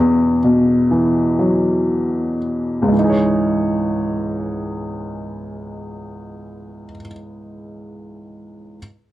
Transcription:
upright piano
Already playing: E3 F#3
0.00 E2
0.44 B2
0.91 E3
1.39 F#3
2.82 C#2
2.88 G#2
2.93 E3
2.99 D#4
3.04 G#4
3.09 C#5

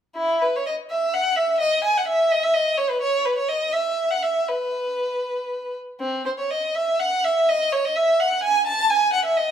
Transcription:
violin
0.16 E4
0.42 B4
0.56 C#5
0.67 D#5
0.90 E5
1.14 F#5
1.37 E5
1.60 D#5
1.84 G#5
1.98 F#5
2.08 E5
2.32 D#5
2.43 E5
2.54 D#5
2.78 C#5
2.90 B4
3.02 C#5
3.26 B4
3.38 C#5
3.49 D#5
3.73 E5
4.11 F#5
4.23 E5
4.48 B4
6.00 C4
6.26 C5
6.39 C#5
6.50 D#5
6.75 E5
7.00 F#5
7.24 E5
7.49 D#5
7.73 C#5
7.85 D#5
7.96 E5
8.20 F#5
8.43 G#5
8.67 A5
8.90 G#5
9.13 F#5
9.25 E5
9.37 D#5

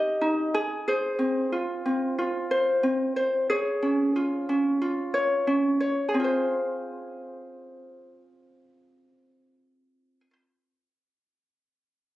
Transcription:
ukulele
Already playing: D#4 G4 A#4 D#5
0.21 D#4
0.54 G#4
0.88 G#4 C5
1.19 C4
1.52 F4
1.86 C4
2.19 F4
2.51 C5
2.83 C4
3.16 C5
3.50 G#4 C#5
3.82 C#4
4.16 F4
4.49 C#4
4.82 F4
5.14 C#5
5.47 C#4
5.80 C#5
6.09 G#4
6.14 C4
6.20 F4
6.24 C5

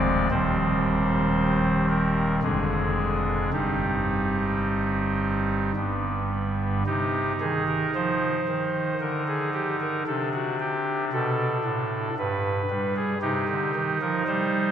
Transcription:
pipe organ
Already playing: D1 D2 F3 G#3 C4 D5
0.31 D#1 D#2 D#3 G3 C4 C5
1.89 A#4
2.42 F1 F2 D3 G#3 D4 G#4
3.53 G1 G2 G3 C4 D#4 G4
5.76 G1 G2 G3 B3 D4
6.86 C3 D#4 G4
7.40 D#3 G#4
7.68 A#4
7.95 F3 C5
8.48 D#3
9.00 D3 A#4
9.27 G#4
9.54 G4
9.80 A#4
10.07 C3 D4 A4
10.33 F#4
10.60 G4
11.13 B2 A4
11.65 A2
12.18 G2 B4
12.70 G3
12.96 G#4
13.21 C3 D#4 G4
13.49 D3
13.75 D#3
14.01 F3 A#4
14.27 G3 C5

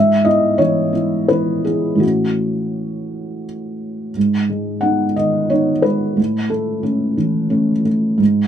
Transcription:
felt piano
Already playing: G#2 E5
0.25 B3 E4 D#5
0.58 E3 B3 E4 C#5
0.93 B3 E4
1.28 E3 B3 E4 B4
1.65 B3 E4 G#4
1.95 A2 E3 A3
2.00 C#4 F#4
4.17 G#2
4.50 G#3
4.81 B3 D#4 F#5
5.16 D#3 D#5
5.50 B3 D#4 C#5
5.82 G#3 B4
6.17 A2
6.50 A3 A4
6.83 A3 C#4
7.17 E3
7.50 A3 C#4
7.85 A3
8.18 G#2

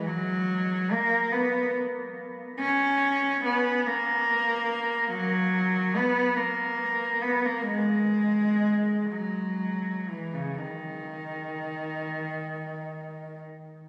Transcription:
cello
0.07 F#3
0.92 A#3
1.32 B3
2.60 C#4
3.46 B3
3.86 A#3
5.12 F#3
5.96 B3
6.36 A#3
7.22 B3
7.45 A#3
7.66 G#3
9.12 F#3
10.08 E3
10.33 C#3
10.59 D#3

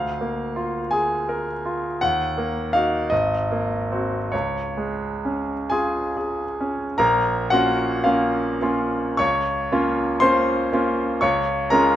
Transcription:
grand piano
Already playing: D2 F5
0.21 A#3
0.56 F4
0.91 G#4 G#5
1.29 A#4
1.66 F4
2.01 D#2 F#5
2.38 A#3
2.73 D#4 F#4 F5
3.10 G#1 D#5
3.52 A#3
3.92 C4 F#4
4.32 C#2 C#5
4.77 G#3
5.25 C#4
5.70 F4 G#4 G#5
6.17 G#4
6.61 C#4
6.98 A#1 A#4 A#5
7.50 A#3 C#4 F4 F#4 F#5
8.04 A#3 C#4 F4 F5
8.62 A#3 C#4 F4
9.17 C#2 C#5 C#6
9.72 A#3 C#4 F4
10.20 A#3 C#4 F4 C5 C6
10.73 A#3 C#4 F4
11.21 C#2 C#5 C#6
11.70 G#3 C#4 F4 A#4 A#5

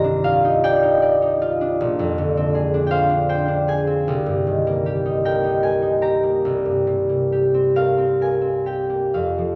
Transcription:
harp
Already playing: C2 G2 D#3 C4 D#4 F4 C5 F5 A#5 C6
0.04 D4
0.24 F4 F5
0.45 D#4
0.64 D5 G5
0.83 D#4
1.02 D5
1.22 D#4
1.42 F4
1.61 D4
1.81 A#1
1.99 F2
2.18 D3
2.37 C4
2.55 G#4
2.74 D4
2.87 G5
2.91 C5 F5
3.10 D4
3.29 C5 G5
3.48 D4
3.68 G#4 G#5
3.87 C4
4.08 C2
4.26 G2
4.47 D#3
4.67 A#3
4.86 G4
5.06 D#4
5.25 A#4 G5
5.44 D#4
5.63 A#4 G#5
5.82 D#4
6.02 G4 A#5
6.23 A#3
6.45 C2
6.65 G2
6.87 C3
7.09 A#3
7.32 G4
7.54 C4
7.76 A#4 F5
7.98 C4
8.21 A#4 G#5
8.41 C4
8.66 G4 G5
8.90 A#3
9.14 F2 F5
9.38 F3

